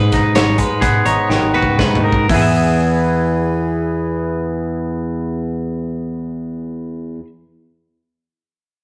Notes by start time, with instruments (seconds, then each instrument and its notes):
Already playing: clean electric guitar G#2 B3 G#4 B4
0.12 fingered electric bass F#1, clean electric guitar D#4, kick, snare, closed hi-hat
0.34 fingered electric bass G#1, clean electric guitar C#5, snare, closed hi-hat
0.58 clean electric guitar G#3 B4, kick, closed hi-hat
0.81 clean electric guitar B3 G#4, kick, snare, closed hi-hat
1.05 fingered electric bass G#1, clean electric guitar D#4 C#5, closed hi-hat
1.29 fingered electric bass G#1, clean electric guitar D#3, snare
1.42 fingered electric bass G#1
1.54 fingered electric bass D#2, clean electric guitar F#4 B4
1.62 fingered electric bass C#2, kick
1.79 clean electric guitar G#2 B4, kick, snare
1.95 floor tom
2.04 clean electric guitar D#4 A#4
2.12 kick
2.29 fingered electric bass E2, clean electric guitar E2 E3 E4, kick, open hi-hat
2.33 clean electric guitar B3 G#4
2.38 clean electric guitar B4
2.42 clean electric guitar E5